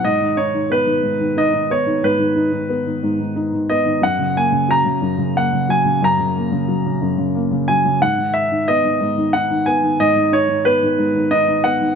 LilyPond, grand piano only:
\new Staff \with { instrumentName = "Grand piano" } { \time 6/8 \key gis \minor \tempo 4. = 60 dis''8 cis''8 b'4 dis''8 cis''8 | b'2 r8 dis''8 | fis''8 gis''8 ais''4 fis''8 gis''8 | ais''2 r8 gis''8 |
fis''8 e''8 dis''4 fis''8 gis''8 | dis''8 cis''8 b'4 dis''8 fis''8 | }